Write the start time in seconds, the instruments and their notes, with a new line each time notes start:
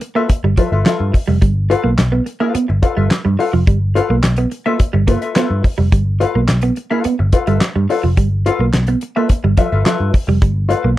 0.01 muted clean electric guitar stroke, closed hi-hat
0.15 clean electric guitar A#3, hollow-body jazz guitar F4 A4 B4 E5
0.29 muted clean electric guitar stroke, muted picked electric bass stroke, muted hollow-body jazz guitar stroke, kick, closed hi-hat
0.44 picked electric bass G1, clean electric guitar G3, muted hollow-body jazz guitar stroke
0.57 clean electric guitar F3, hollow-body jazz guitar F4 A4 B4 E5, kick, closed hi-hat
0.72 picked electric bass G1, hollow-body jazz guitar F4 A4 B4 E5
0.86 clean electric guitar F3, hollow-body jazz guitar F4 A4 B4 E5, snare, clap, closed hi-hat
1.00 picked electric bass G2
1.14 muted clean electric guitar stroke, muted hollow-body jazz guitar stroke, kick, open hi-hat
1.27 picked electric bass F1, clean electric guitar G3, muted hollow-body jazz guitar stroke
1.42 picked electric bass G1, clean electric guitar G3, kick, closed hi-hat
1.70 hollow-body jazz guitar F4 A4 B4 F5, muted clean electric guitar stroke, closed hi-hat
1.84 picked electric bass B1, clean electric guitar A#3
1.98 picked electric bass B1, muted hollow-body jazz guitar stroke, snare, clap, closed hi-hat
2.12 clean electric guitar B3, muted hollow-body jazz guitar stroke
2.26 muted clean electric guitar stroke, closed hi-hat
2.40 clean electric guitar A#3, hollow-body jazz guitar F4 A4 B4 F5
2.55 clean electric guitar B3, muted picked electric bass stroke, muted hollow-body jazz guitar stroke, closed hi-hat
2.68 picked electric bass G1, muted clean electric guitar stroke, muted hollow-body jazz guitar stroke
2.82 hollow-body jazz guitar F4 A4 B4 F5, kick, closed hi-hat
2.96 picked electric bass G1, clean electric guitar G3, hollow-body jazz guitar F4 A4 B4 E5
3.11 muted hollow-body jazz guitar stroke, snare, clap, closed hi-hat
3.25 picked electric bass G2, clean electric guitar G3, muted hollow-body jazz guitar stroke
3.39 hollow-body jazz guitar F4 A4 B4 F5, muted clean electric guitar stroke, open hi-hat
3.53 picked electric bass F1, clean electric guitar F3, muted hollow-body jazz guitar stroke
3.67 picked electric bass G1, clean electric guitar G3, kick, closed hi-hat
3.95 hollow-body jazz guitar F4 A4 B4 F5, muted clean electric guitar stroke, closed hi-hat
4.10 picked electric bass B1, clean electric guitar A#3
4.23 picked electric bass B1, muted hollow-body jazz guitar stroke, snare, clap, closed hi-hat
4.37 clean electric guitar B3, muted hollow-body jazz guitar stroke, closed hi-hat
4.51 muted clean electric guitar stroke, closed hi-hat
4.66 clean electric guitar A#3, hollow-body jazz guitar F4 A4 B4 E5
4.79 muted hollow-body jazz guitar stroke, muted clean electric guitar stroke, muted picked electric bass stroke, kick, closed hi-hat
4.93 picked electric bass G1, clean electric guitar G3, muted hollow-body jazz guitar stroke
5.07 clean electric guitar A#3, hollow-body jazz guitar F4 A4 B4 E5, kick, closed hi-hat
5.22 hollow-body jazz guitar F4 A4 B4 E5, closed hi-hat
5.36 clean electric guitar B3, hollow-body jazz guitar F4 A4 B4 E5, snare, clap, closed hi-hat
5.51 picked electric bass G2
5.64 muted clean electric guitar stroke, muted hollow-body jazz guitar stroke, kick, open hi-hat
5.78 picked electric bass F1, clean electric guitar G3, muted hollow-body jazz guitar stroke
5.92 picked electric bass G1, clean electric guitar G3, kick, closed hi-hat
6.20 hollow-body jazz guitar F4 A4 B4 F5, muted clean electric guitar stroke, closed hi-hat
6.35 picked electric bass B1, clean electric guitar A#3
6.48 picked electric bass B1, muted hollow-body jazz guitar stroke, snare, clap, closed hi-hat
6.61 clean electric guitar B3, muted hollow-body jazz guitar stroke, closed hi-hat
6.76 muted clean electric guitar stroke, closed hi-hat
6.90 clean electric guitar A#3, hollow-body jazz guitar F4 A4 B4 F5
7.04 clean electric guitar B3, muted hollow-body jazz guitar stroke, muted picked electric bass stroke, closed hi-hat
7.19 picked electric bass G1, muted clean electric guitar stroke, muted hollow-body jazz guitar stroke
7.32 hollow-body jazz guitar F4 A4 B4 F5, kick, closed hi-hat
7.47 picked electric bass G1, clean electric guitar G3, hollow-body jazz guitar F4 A4 B4 E5, closed hi-hat
7.61 muted hollow-body jazz guitar stroke, snare, clap, closed hi-hat
7.75 picked electric bass G2, clean electric guitar G3, muted hollow-body jazz guitar stroke
7.89 hollow-body jazz guitar F4 A4 B4 F5, muted clean electric guitar stroke, open hi-hat
8.03 picked electric bass F1, clean electric guitar F3, muted hollow-body jazz guitar stroke
8.17 picked electric bass G1, clean electric guitar G3, kick, closed hi-hat
8.46 hollow-body jazz guitar F4 A4 B4 F5, muted clean electric guitar stroke, closed hi-hat
8.60 picked electric bass B1, clean electric guitar A#3
8.73 picked electric bass B1, muted hollow-body jazz guitar stroke, snare, clap, closed hi-hat
8.87 clean electric guitar B3, muted hollow-body jazz guitar stroke, closed hi-hat
9.01 muted clean electric guitar stroke, closed hi-hat
9.16 clean electric guitar A#3, hollow-body jazz guitar F4 A4 B4 E5
9.29 muted picked electric bass stroke, muted hollow-body jazz guitar stroke, muted clean electric guitar stroke, kick, closed hi-hat
9.44 picked electric bass G1, clean electric guitar G3, muted hollow-body jazz guitar stroke
9.57 clean electric guitar F3, hollow-body jazz guitar F4 A4 B4 E5, kick, closed hi-hat
9.72 picked electric bass G1, hollow-body jazz guitar F4 A4 B4 E5
9.86 clean electric guitar F3, hollow-body jazz guitar F4 A4 B4 E5, snare, clap, closed hi-hat
10.00 picked electric bass G2
10.13 muted hollow-body jazz guitar stroke, muted clean electric guitar stroke, kick, open hi-hat
10.27 picked electric bass F1, clean electric guitar G3, muted hollow-body jazz guitar stroke
10.42 picked electric bass G1, clean electric guitar G3, kick, closed hi-hat
10.69 hollow-body jazz guitar F4 A4 B4 F5, muted clean electric guitar stroke, closed hi-hat
10.84 picked electric bass B1, clean electric guitar A#3